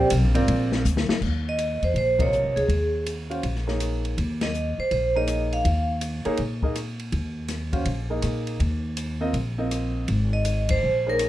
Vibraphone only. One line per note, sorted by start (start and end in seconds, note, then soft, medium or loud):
1.49 1.85 D#5 medium
1.84 1.97 C5 medium
1.98 2.21 C5 medium
2.22 2.59 C#5 medium
2.56 3.02 G#4 medium
4.43 4.76 D#5 medium
4.80 4.91 C5 medium
4.92 5.16 C5 medium
5.17 5.54 D#5 medium
5.53 5.99 F5 medium
10.33 10.71 D#5 medium
10.71 11.08 C5 medium
11.10 11.29 A#4 medium